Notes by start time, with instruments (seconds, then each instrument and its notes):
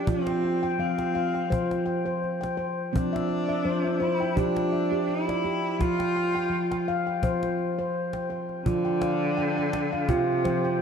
Already playing: cello D4
0.07 handpan F3 F4, cello C4, cajon bass
0.27 handpan G5, cajon slap
0.43 handpan G5, cajon slap
0.63 handpan G5
0.79 handpan F3 F5, cello C4
0.99 handpan G5, cajon slap
1.15 handpan F5, cajon slap
1.34 handpan G5
1.50 handpan F3 C5, cajon bass
1.71 cajon slap
1.86 handpan G5
2.06 handpan C5
2.24 cajon slap
2.41 handpan G5, cajon slap
2.57 handpan C5, cajon slap
2.93 handpan F3 C4, cello D4, cajon bass
3.13 handpan E5, cajon slap
3.29 handpan D5, cajon slap
3.49 handpan E5
3.65 handpan F3 C5
3.84 handpan E5
4.00 cello E4, handpan C5, cajon slap
4.20 handpan G5
4.36 handpan F3 G4, cello D4, cajon bass
4.56 cajon slap
4.73 handpan E5
4.92 handpan G4
5.08 cello E4, cajon slap
5.28 handpan D5, cajon slap
5.44 handpan G4, cajon slap
5.79 handpan F3 F4, cello F4, cajon bass, cajon slap
5.99 handpan G5, cajon slap
6.16 handpan G5
6.35 handpan G5, cajon slap
6.50 handpan F3
6.71 handpan G5, cajon slap
6.88 handpan F5
7.07 handpan G5
7.23 handpan F3 C5, cajon bass
7.43 cajon slap
7.59 cajon slap
7.79 handpan C5
8.13 handpan G5, cajon slap
8.30 handpan C5, cajon slap
8.49 cajon slap
8.64 cello D3, handpan F3 F4, cajon bass
8.85 handpan G5
9.01 handpan F5, cajon slap
9.37 handpan G5
9.57 handpan G5
9.73 cajon slap
9.92 handpan F5
10.08 cello C3, handpan F4 G5, cajon bass
10.44 handpan F3 C5 G5, cajon slap
10.64 handpan G5
10.79 cello B2